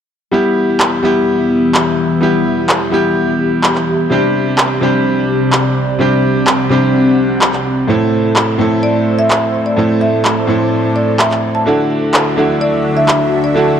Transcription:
0.31 analog synth pad E3 B3 G4 E5, grand piano G3 B3 E4 G4
0.80 clap
1.02 grand piano G3 B3 E4 G4
1.75 clap
2.20 grand piano G3 B3 E4 G4
2.69 clap
2.91 grand piano G3 B3 E4 G4
3.64 clap
3.75 clap
4.10 grand piano C3 G3 C4 D4 G4, analog synth pad C3 C4 D5
4.58 clap
4.81 grand piano C3 G3 C4 D4 G4
5.53 clap
5.99 grand piano C3 G3 C4 D4 G4, analog synth pad F#5
6.47 clap
6.69 grand piano C3 G3 C4 D4 G4
7.41 clap
7.53 clap
7.87 grand piano A2 A3 C4 E4 A4, analog synth pad A3 A4 C5 E5
8.36 clap
8.58 grand piano A2 A3 C4 E4 A4
8.83 marimba D5
9.19 marimba E5
9.30 marimba E5, clap
9.66 marimba D5
9.76 grand piano A2 A3 C4 E4 A4, analog synth pad D5
10.01 marimba E5
10.25 clap
10.47 grand piano A2 A3 C4 E4 A4
10.96 marimba D5
11.19 marimba E5, clap
11.31 clap
11.55 marimba A5
11.65 grand piano D3 A3 D4 E4 F#4, analog synth pad D3 D4 F#4 E5
12.14 clap
12.36 grand piano D3 A3 D4 E4 F#4
12.61 marimba D5
12.97 marimba E5
13.08 marimba E5, clap
13.44 marimba D5
13.54 grand piano D3 A3 D4 E4 F#4

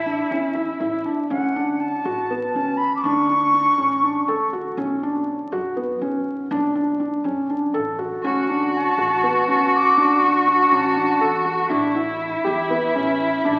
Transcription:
Already playing: upright bass A1, cello E4, flute E5
0.06 felt piano D4
0.31 upright bass E2, felt piano C#4
0.55 felt piano E4
0.80 upright bass A1, felt piano E4
1.05 felt piano D4
1.30 upright bass D2, felt piano C#4, flute F#5
1.56 felt piano D4
1.80 flute A5
2.05 upright bass A1, felt piano F#4
2.30 felt piano B3
2.54 upright bass D2, felt piano C#4, flute A5
2.77 flute B5
2.96 flute D6
3.02 upright bass D2, felt piano D4, flute C#6
3.29 felt piano D4
3.54 felt piano D4
3.78 upright bass A1, felt piano C#4
4.03 felt piano D4
4.28 upright bass D2, felt piano A4
4.53 felt piano F#4
4.77 upright bass B1, felt piano C#4
5.03 felt piano D4
5.52 upright bass F#2, felt piano F#4
5.77 felt piano B3
6.01 upright bass B1, felt piano C#4
6.51 upright bass B1, felt piano D4
6.75 felt piano D4
7.00 felt piano D4
7.24 upright bass F#2, felt piano C#4
7.50 felt piano D4
7.74 upright bass A1, felt piano A4
7.99 felt piano F#4
8.23 upright bass D2, felt piano C#4, cello F#4, flute F#5
8.49 felt piano D4
8.76 flute A5
8.98 upright bass A1, felt piano F#4
9.23 felt piano B3
9.48 upright bass D2, felt piano C#4, flute A5
9.75 flute D6
9.97 upright bass D2, felt piano D4
10.23 felt piano D4, flute C#6
10.48 felt piano D4
10.71 upright bass A1, felt piano C#4, flute A5
10.97 felt piano D4
11.21 upright bass E2, felt piano A4
11.45 felt piano F#4
11.69 upright bass A1, felt piano D4, cello E4
11.95 felt piano E4
12.44 upright bass E2, felt piano G4
12.70 felt piano B3
12.95 upright bass A1, felt piano C#4
13.45 upright bass A1, felt piano D4

